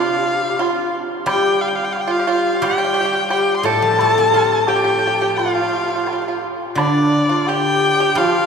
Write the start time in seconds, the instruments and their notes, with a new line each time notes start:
Already playing: guzheng C3, pipa F4, erhu F5
0.04 xiao G4
0.10 xiao F4
0.18 xiao G4
0.26 xiao F4
0.35 xiao G4
0.42 xiao F4
0.50 xiao G4
0.59 pipa F4, xiao F4, high woodblock, low woodblock
1.26 guzheng G3, pipa G4, erhu G5, high woodblock
1.31 xiao G4
1.61 erhu F5
1.68 erhu G5
1.76 erhu F5
1.85 erhu G5
1.92 erhu F5, low woodblock
2.01 erhu G5
2.08 pipa F4, xiao F4, erhu F5
2.19 pipa G4
2.27 pipa F4, xiao F4, erhu F5
2.62 guzheng G3, pipa G4, xiao G4, erhu G5, high woodblock
2.69 pipa G4
2.78 pipa G4
2.85 pipa G4
2.94 pipa G4
3.01 pipa G4
3.06 pipa G4
3.13 pipa G4
3.30 pipa G4, xiao G4, erhu G5, high woodblock, low woodblock
3.57 erhu C6
3.63 guzheng A2, xiao A4, pipa A4, erhu A5
3.82 guzheng F3
3.99 guzheng A3, high woodblock
4.18 guzheng C4
4.34 guzheng F4, pipa A4
4.67 xiao G4, pipa G4, erhu G5, low woodblock
4.76 pipa G4
4.84 pipa G4
4.90 pipa G4
4.99 pipa G4
5.07 pipa G4
5.19 xiao G4, pipa G4
5.37 xiao F4, pipa F4, erhu F5, high woodblock
5.46 pipa F4
5.55 pipa F4
5.61 pipa F4
5.68 pipa F4
5.75 pipa F4
5.84 pipa F4
5.90 pipa F4
5.96 pipa F4
6.06 pipa F4, high woodblock, low woodblock
6.13 pipa F4
6.22 pipa F4
6.28 pipa F4
6.75 guzheng D3, pipa D4, xiao D4, erhu D5, high woodblock
7.29 pipa F4
7.46 xiao G4, pipa G4, erhu G5, low woodblock
8.00 pipa G4
8.15 guzheng F3, xiao F4, pipa F4, erhu F5, high woodblock